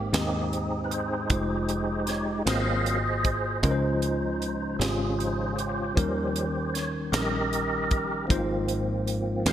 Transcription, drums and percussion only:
0.14 snare loud
0.14 closed hi-hat medium
0.53 closed hi-hat soft
0.91 closed hi-hat soft
1.30 kick loud
1.30 closed hi-hat medium
1.69 closed hi-hat soft
2.07 snare soft
2.07 closed hi-hat medium
2.47 snare loud
2.47 closed hi-hat medium
2.86 closed hi-hat soft
3.24 kick medium
3.24 closed hi-hat soft
3.63 kick medium
3.63 closed hi-hat medium
4.02 closed hi-hat soft
4.42 closed hi-hat medium
4.81 snare loud
4.81 closed hi-hat medium
5.20 closed hi-hat soft
5.59 closed hi-hat soft
5.97 kick loud
5.97 closed hi-hat medium
6.36 closed hi-hat medium
6.75 snare soft
6.75 closed hi-hat soft
7.13 snare loud
7.13 closed hi-hat medium
7.53 closed hi-hat medium
7.91 kick medium
7.91 closed hi-hat soft
8.30 kick loud
8.30 closed hi-hat medium
8.68 closed hi-hat medium
9.07 closed hi-hat soft
9.46 snare loud
9.46 closed hi-hat medium

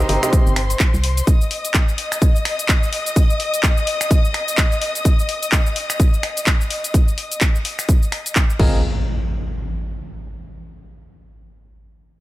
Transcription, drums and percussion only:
0.09 open hi-hat loud
0.23 finger snap medium
0.23 closed hi-hat soft
0.23 shaker medium
0.33 kick loud
0.33 closed hi-hat medium
0.33 shaker medium
0.47 shaker soft
0.56 finger snap medium
0.56 open hi-hat loud
0.70 closed hi-hat soft
0.70 shaker medium
0.80 kick loud
0.80 clap loud
0.80 closed hi-hat medium
0.80 shaker medium
0.94 shaker soft
1.04 open hi-hat loud
1.17 closed hi-hat soft
1.17 shaker medium
1.27 kick loud
1.27 closed hi-hat medium
1.27 shaker medium
1.41 shaker soft
1.51 open hi-hat loud
1.65 closed hi-hat soft
1.65 shaker medium
1.74 kick loud
1.74 clap loud
1.74 closed hi-hat medium
1.74 shaker medium
1.88 shaker soft
1.98 open hi-hat loud
2.12 finger snap medium
2.12 closed hi-hat medium
2.12 shaker medium
2.22 kick loud
2.22 closed hi-hat medium
2.22 shaker medium
2.36 shaker soft
2.45 finger snap medium
2.45 open hi-hat loud
2.59 closed hi-hat soft
2.59 shaker medium
2.69 kick loud
2.69 clap loud
2.69 closed hi-hat medium
2.69 shaker medium
2.83 shaker soft
2.93 open hi-hat loud
3.06 closed hi-hat soft
3.06 shaker medium
3.16 kick loud
3.16 closed hi-hat medium
3.16 shaker medium
3.30 shaker soft
3.40 open hi-hat loud
3.54 closed hi-hat medium
3.54 shaker medium
3.63 kick loud
3.63 clap loud
3.63 closed hi-hat medium
3.63 shaker medium
3.77 shaker soft
3.87 open hi-hat loud
4.01 finger snap medium
4.01 closed hi-hat medium
4.01 shaker medium
4.11 kick loud
4.11 closed hi-hat medium
4.11 shaker medium
4.25 shaker soft
4.34 finger snap medium
4.34 open hi-hat loud
4.48 closed hi-hat medium
4.48 shaker medium
4.58 kick loud
4.58 clap loud
4.58 closed hi-hat medium
4.58 shaker medium
4.72 shaker soft
4.82 open hi-hat loud
4.95 closed hi-hat soft
4.95 shaker medium
5.05 kick loud
5.05 closed hi-hat medium
5.05 shaker medium
5.19 shaker soft
5.29 open hi-hat loud
5.43 closed hi-hat medium
5.43 shaker medium
5.52 kick loud
5.52 clap loud
5.52 closed hi-hat medium
5.52 shaker medium
5.66 shaker soft
5.76 open hi-hat loud
5.90 finger snap medium
5.90 closed hi-hat medium
5.90 shaker medium
6.00 kick loud
6.00 closed hi-hat medium
6.00 shaker medium
6.14 shaker soft
6.23 finger snap medium
6.23 open hi-hat loud
6.37 closed hi-hat medium
6.37 shaker medium
6.47 kick loud
6.47 clap loud
6.47 closed hi-hat medium
6.47 shaker medium
6.61 shaker soft
6.71 open hi-hat loud
6.84 closed hi-hat medium
6.84 shaker medium
6.94 kick loud
6.94 closed hi-hat medium
6.94 shaker medium
7.08 shaker soft
7.18 open hi-hat loud
7.32 closed hi-hat medium
7.32 shaker medium
7.41 kick loud
7.41 clap loud
7.41 closed hi-hat medium
7.41 shaker medium
7.55 shaker soft
7.65 open hi-hat loud
7.79 finger snap medium
7.79 open hi-hat medium
7.79 shaker medium
7.89 kick loud
7.89 closed hi-hat medium
7.89 shaker medium
8.03 shaker soft
8.12 finger snap medium
8.12 open hi-hat loud
8.26 closed hi-hat medium
8.26 shaker medium
8.35 kick loud
8.35 clap loud
8.35 closed hi-hat medium
8.35 shaker medium
8.50 shaker soft
8.59 kick loud
8.59 crash medium

